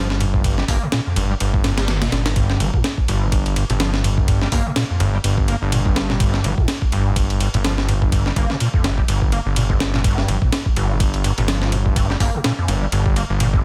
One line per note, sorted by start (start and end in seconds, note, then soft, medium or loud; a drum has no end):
0.00 0.64 G1 medium
0.10 snare medium
0.21 0.25 G2 medium
0.21 ride medium
0.34 kick loud
0.44 0.56 G2 medium
0.44 kick loud
0.44 ride medium
0.58 0.64 G3 loud
0.58 snare soft
0.68 0.78 G1 loud
0.68 0.84 A#3 medium
0.68 kick loud
0.68 open hi-hat medium
0.82 0.88 A2 loud
0.92 1.00 A#2 loud
0.92 snare loud
0.92 ride medium
1.07 1.18 F2 medium
1.16 1.35 G1 loud
1.16 1.24 G2 loud
1.16 ride medium
1.30 1.34 G3 medium
1.40 1.64 G1 medium
1.40 1.52 G2 medium
1.40 ride medium
1.54 kick loud
1.64 2.08 G1 medium
1.64 1.72 G2 medium
1.64 snare loud
1.64 ride medium
1.78 1.90 G3 medium
1.78 snare loud
1.78 ride medium
1.88 2.04 D3 loud
1.88 snare loud
1.88 ride medium
2.02 2.28 A#2 loud
2.02 snare loud
2.02 ride medium
2.12 2.56 G1 medium
2.12 snare loud
2.12 ride medium
2.26 2.35 G2 medium
2.26 snare loud
2.26 ride medium
2.36 2.62 G2 loud
2.36 kick loud
2.36 ride medium
2.50 snare soft
2.60 2.70 G1 loud
2.60 2.76 G3 medium
2.60 ride medium
2.74 2.83 G2 medium
2.74 kick medium
2.84 snare loud
2.84 ride loud
2.98 kick loud
3.08 3.64 G1 loud
3.08 3.23 G2 medium
3.08 ride medium
3.22 3.28 A2 medium
3.32 kick loud
3.32 ride medium
3.46 ride soft
3.56 3.64 G2 medium
3.56 ride medium
3.70 4.48 G1 medium
3.70 3.73 A2 loud
3.70 ride soft
3.80 3.92 F3 medium
3.80 snare loud
3.80 ride medium
3.94 snare medium
4.04 4.09 G2 medium
4.04 ride medium
4.18 kick medium
4.28 4.39 G2 medium
4.28 kick loud
4.28 ride medium
4.42 4.48 G3 loud
4.42 snare soft
4.52 4.62 G1 loud
4.52 4.67 A#3 medium
4.52 kick loud
4.52 open hi-hat medium
4.66 4.71 A2 loud
4.76 4.84 A#2 loud
4.76 snare loud
4.76 ride medium
4.90 5.02 F2 medium
5.00 5.19 G1 loud
5.00 5.08 G2 loud
5.00 ride medium
5.14 5.17 G3 medium
5.24 5.56 G1 medium
5.24 5.36 G2 medium
5.24 ride medium
5.38 kick loud
5.48 5.56 A#3 medium
5.48 ride medium
5.62 6.40 G1 loud
5.72 5.80 A#2 loud
5.72 ride medium
5.86 5.92 F2 medium
5.86 kick loud
5.96 snare loud
5.96 ride medium
6.10 6.16 A#2 medium
6.10 snare soft
6.20 6.46 G2 loud
6.20 kick loud
6.20 ride medium
6.34 snare soft
6.44 6.54 G1 loud
6.44 6.60 G3 medium
6.44 ride medium
6.58 6.67 G2 medium
6.58 kick loud
6.68 snare loud
6.68 ride loud
6.82 kick loud
6.92 7.48 G1 loud
6.92 7.08 G2 medium
6.92 ride medium
7.06 7.12 A2 medium
7.16 kick loud
7.16 ride medium
7.30 ride soft
7.40 7.48 G2 medium
7.40 ride medium
7.54 8.32 G1 medium
7.54 7.57 A2 loud
7.54 ride soft
7.64 7.76 F3 medium
7.64 snare loud
7.64 ride medium
7.78 snare medium
7.88 7.93 G2 medium
7.88 ride medium
8.02 kick loud
8.12 8.24 G2 medium
8.12 kick loud
8.12 ride medium
8.26 8.32 G3 loud
8.26 snare soft
8.36 8.46 G1 loud
8.36 8.52 A#3 medium
8.36 kick loud
8.36 ride medium
8.50 8.56 A2 loud
8.50 snare soft
8.60 8.68 A#2 loud
8.60 ride medium
8.74 8.86 F2 medium
8.74 kick medium
8.84 9.03 G1 loud
8.84 8.92 G2 loud
8.84 snare loud
8.84 ride medium
8.98 9.01 G3 medium
8.98 kick medium
9.08 9.40 G1 medium
9.08 9.20 G2 medium
9.08 ride medium
9.22 kick loud
9.32 9.40 A#3 medium
9.32 ride medium
9.46 10.24 G1 loud
9.56 9.64 A#2 loud
9.56 ride medium
9.70 9.76 F2 medium
9.70 kick loud
9.80 snare loud
9.80 ride medium
9.94 10.00 A#2 medium
9.94 snare soft
10.04 10.30 G2 loud
10.04 kick loud
10.04 ride medium
10.18 snare soft
10.28 10.38 G1 loud
10.28 10.43 G3 medium
10.28 ride medium
10.42 10.51 G2 medium
10.42 kick loud
10.52 snare loud
10.52 ride medium
10.66 kick loud
10.76 11.32 G1 loud
10.76 10.92 G2 medium
10.76 ride medium
10.90 10.96 A2 medium
11.00 kick loud
11.00 ride medium
11.14 ride soft
11.24 11.32 G2 medium
11.24 ride medium
11.38 12.16 G1 medium
11.38 11.41 A2 loud
11.38 ride soft
11.48 11.74 F3 medium
11.48 snare loud
11.48 ride medium
11.62 snare medium
11.72 11.77 F2 loud
11.72 ride medium
11.86 kick loud
11.96 12.08 G2 medium
11.96 kick loud
11.96 ride medium
12.10 12.16 G3 loud
12.10 snare soft
12.20 12.30 G1 loud
12.20 12.36 A#3 medium
12.20 kick medium
12.20 open hi-hat medium
12.34 12.40 A2 loud
12.44 12.52 A#2 loud
12.44 snare loud
12.44 ride medium
12.58 12.70 F2 medium
12.68 12.87 G1 loud
12.68 12.76 G2 loud
12.68 ride medium
12.82 12.85 G3 medium
12.92 13.24 G1 loud
12.92 13.04 G2 medium
12.92 ride medium
13.06 kick loud
13.16 13.24 A#3 medium
13.16 ride medium
13.30 13.64 G1 loud
13.40 13.48 A#2 loud
13.40 ride medium
13.54 13.60 F2 medium
13.54 kick loud